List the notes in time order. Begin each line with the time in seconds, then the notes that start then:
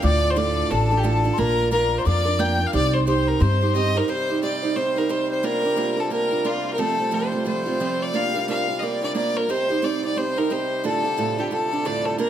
0.02 D2 A2 D3 D4 F4 A4 D5 D6
0.30 C5 C6
0.36 D2 A2 D3 D4 F4 A4 D5 D6
0.70 A1 D3 D4 F4 A4 A5
0.91 D3 D4 F4 A4
0.97 G4 G5
1.03 D2 A2 D3 D4 F4 A4 A5
1.24 D3 D4 F4 A4
1.34 C6
1.38 A#1 A#3 D4 F4 A#4 A#5
1.71 A#3 D4 F4 A#4 A#5
1.98 C5 C6
2.05 F2 A#3 D4 F4 A#4 D5 D6
2.25 D4 F4 A#4
2.39 A#3 D4 F4 A#4 G5 G6
2.58 D4 F4 A#4
2.67 F5 F6
2.73 C2 C4 D#4 G4 C5 D5 D6
2.93 C5 C6
3.07 C4 D#4 G4 C5 C6
3.27 A#4 A#5
3.40 G2 C4 D#4 G4 C5 C6
3.61 D#4 G4 C5
3.75 C4 D#4 G4 C5 D#5
3.95 D#4 G4 A#4 C5
4.08 C3 G3 C4 D#4 G4 C5
4.29 D#4 G4 C5
4.43 C4 D#4 G4 C5 D5
4.62 D#4 G4 C5
4.76 C4 D#4 G4 C5
4.96 D#4 G4 A#4 C5
5.09 C4 D#4 G4 C5
5.31 C5
5.43 A#3 D4 F4 A#4
5.63 D4 F4 A#4
5.76 A#3 D4 F4 A#4
5.97 D4 F4 A4 A#4
6.10 A#3 D4 F4 A#4
6.31 D4 F4 A#4
6.44 A#3 D4 F4 A#4
6.73 A#4
6.78 F3 A3 C4 F4 A4
6.98 A3 C4 F4
7.11 F3 A3 C4 F4 C5
7.32 A3 C4 F4
7.45 F3 A3 C4 F4 C5
7.66 A3 C4 F4
7.80 F3 A3 C4 F4
8.02 D5
8.13 A#3 D4 F4 A#4 F5
8.34 D4 F4 A#4
8.48 A#3 D4 F4 A#4 F5
8.68 D4 F4 A#4
8.79 A#3 D4 D#5
8.83 F4 A#4 D5
9.02 D4 F4 A#4 D5
9.15 A#3 D4 F4 A#4 D5
9.37 A#4
9.49 C3 G3 C4 D#4 G4 C5
9.69 D#4 G4 C5
9.82 C4 D#4 G4 C5 D5
10.02 D#4 G4 C5 D5
10.16 C4 D#4 G4 C5
10.36 D#4 G4 A#4 C5
10.50 C4 D#4 G4 C5
10.84 D2 A2 D3 D4 F4 A4
11.04 D3 D4 F4 A4
11.17 D2 A2 D3 D4 F4 A4
11.37 D3 D4 F4 G4 A4
11.51 D3 D4 F4 A4
11.71 D3 D4 F4 A4
11.85 D2 A2 D3 D4 F4 A4 D5
12.06 A4
12.18 A#3 D4 F4 A#4